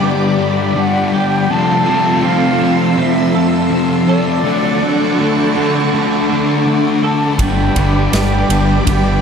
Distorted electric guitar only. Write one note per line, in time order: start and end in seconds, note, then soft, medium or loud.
0.01 0.73 G2 medium
0.01 0.40 D3 loud
0.01 0.37 G3 medium
0.38 0.76 D3 medium
0.38 0.77 G3 medium
0.74 1.47 G2 medium
0.74 1.14 D3 medium
0.74 1.11 G3 medium
1.12 1.49 D3 medium
1.12 1.47 G3 medium
1.49 2.22 F2 medium
1.49 1.88 C3 medium
1.49 1.85 F3 loud
1.86 2.23 C3 medium
1.86 2.25 F3 medium
2.23 2.95 F2 medium
2.23 2.62 C3 medium
2.23 2.59 F3 medium
2.60 2.96 C3 medium
2.60 2.98 F3 medium
2.96 3.69 F2 medium
2.96 3.35 C3 loud
2.96 3.32 F3 loud
3.33 3.70 C3 medium
3.33 3.71 F3 medium
3.70 4.42 F2 medium
3.70 4.09 C3 medium
3.70 4.06 F3 medium
4.07 4.43 C3 medium
4.07 4.42 F3 medium
4.43 5.17 D3 medium
4.43 4.82 A3 loud
4.43 4.80 D4 loud
4.80 5.19 A3 medium
4.80 5.21 D4 medium
5.18 5.90 D3 medium
5.18 5.56 A3 medium
5.18 5.54 D4 medium
5.55 5.92 A3 medium
5.55 5.94 D4 medium
5.91 6.64 D3 medium
5.91 6.32 A3 medium
5.91 6.29 D4 loud
6.29 6.66 A3 medium
6.29 6.68 D4 medium
6.65 7.37 D3 medium
6.65 7.04 A3 medium
6.65 7.02 D4 medium
7.03 7.39 A3 medium
7.03 9.21 D4 medium
7.39 8.11 G2 medium
7.39 7.77 D3 medium
7.39 7.74 G3 loud
7.75 8.12 D3 medium
7.75 8.14 G3 medium
8.11 8.84 G2 medium
8.11 8.49 D3 medium
8.11 8.47 G3 medium
8.47 8.85 D3 medium
8.47 8.87 G3 medium
8.85 9.21 G2 medium
8.85 9.21 D3 medium
8.85 9.20 G3 loud